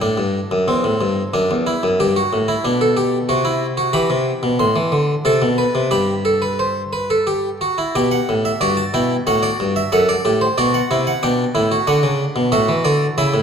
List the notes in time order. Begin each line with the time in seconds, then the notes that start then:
0.01 A2 D4
0.17 G2
0.51 F#2
0.68 E2 C4
0.84 A2
1.01 G2
1.34 F#2 D4
1.51 E2
1.67 E4
1.83 F#2
2.00 G2 G4
2.16 F#4
2.33 A2
2.48 E4
2.65 B2 D4
2.81 A4
2.97 G4
3.29 C3 F#4
3.45 E4
3.77 F#4
3.93 E3 G4 B5
4.10 C3
4.43 B2
4.59 A2 C6
4.76 E3
4.92 D3
5.25 C3 A4 A5
5.42 B2
5.58 B4
5.75 C3
5.91 G2 G4 B5
6.25 A4
6.42 B4
6.59 C5
6.93 B4
7.10 A4
7.27 G4
7.61 F#4
7.78 E4
7.95 B2 G4 G5
8.11 F#5
8.29 A2
8.45 E5
8.61 G2 F#4 D5
8.77 A5
8.94 B2 E4 G5
9.27 A2 F#4 F#5
9.43 D5
9.60 G2
9.76 E5
9.92 F#2 A4 F#5
10.09 D5
10.25 A2 G4
10.41 C5
10.58 B2 F#4 D5
10.74 F#5
10.91 C3 E4
11.07 F#5
11.23 B2 D4 G5
11.55 A2 E4
11.71 F#4
11.87 D3 D4 F#5
12.03 C#3
12.36 B2
12.52 A2 F#4 E5
12.69 E3
12.85 D3 D5
13.18 C#3 E4 E5
13.34 A2